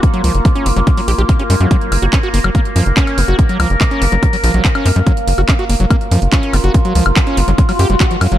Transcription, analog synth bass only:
\new Staff \with { instrumentName = "Analog synth bass" } { \clef bass \time 4/4 \key fis \major \tempo 4 = 143 r8 cis,16 fis,,16 r8 fis,,16 fis,,16 r8 ais,,16 ais,,16 r8 fis,16 fis,16 | r8 fis,,16 fis,,16 r8 fis,,16 fis,,16 r8 fis,16 fis,,16 r8 fis,,16 fis,,16 | r8 cis,16 fis,,16 r8 fis,,16 fis,,16 r8 ais,,16 ais,,16 r8 fis,16 fis,16 | r8 fis,,16 fis,,16 r8 fis,,16 fis,,16 r8 fis,16 fis,,16 r8 fis,,16 fis,,16 |
r8 cis,16 fis,,16 r8 fis,,16 fis,,16 r8 fis,16 fis,,16 r8 fis,16 fis,,16 | }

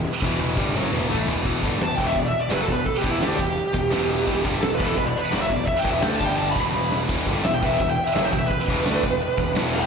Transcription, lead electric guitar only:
\new Staff \with { instrumentName = "Lead electric guitar" } { \time 4/4 \key e \minor \tempo 4 = 170 r1 | r4 \tuplet 3/2 { a''8 g''8 e''8 d''8 e''8 d''8 b'8 a'8 b'8 } | \tuplet 3/2 { a'8 g'8 e'8 g'8 g'4~ } g'2~ | g'8 r8 \tuplet 3/2 { a'8 b'8 a'8 b'8 d''8 b'8 d''8 e''8 d''8 } |
\tuplet 3/2 { e''8 g''8 e''8 g''8 a''8 g''8 a''8 b''8 b''8~ } b''8 r8 | r4 \tuplet 3/2 { e''8 g''8 e''8 e''8 g''8 e''8 e''8 g''8 e''8 } | b'2. r8 <b' g''>8 | }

